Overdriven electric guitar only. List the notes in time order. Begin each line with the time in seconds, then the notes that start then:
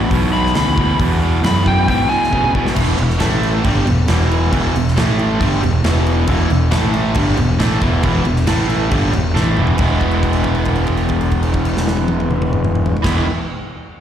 0.12 E2 B2
0.33 E2 B2
0.55 E2 C#3
0.78 E2 B2
1.00 E2 B2
1.21 E2 B2
1.43 E2 C#3
1.65 E2 B2
1.88 E2 B2
2.10 E2 B2
2.31 E2 C#3
2.55 E2 B2
2.74 E2 B2 E3
2.98 E2 B2
3.19 A2 E3 A3
3.64 G2 D3 G3
3.86 E2 B2
4.08 E2 B2 E3
4.52 E2 B2 E3
4.75 E2 B2
4.96 A2 E3 A3
5.39 G2 D3 G3
5.62 E2 B2
5.84 E2 B2 E3
6.28 E2 B2 E3
6.49 E2 B2
6.71 A2 E3 A3
7.15 G2 D3 G3
7.38 E2 B2
7.59 A2 E3 A3
7.81 E2 B2 E3
8.03 E2 B2 E3
8.26 E2 B2
8.46 A2 E3 A3
8.90 G2 D3 G3
9.13 E2 B2
9.35 A2 E3 A3
9.57 E2 B2 E3
9.78 E3 G#3 B3
9.82 E4
13.02 E3 G#3 B3
13.06 E4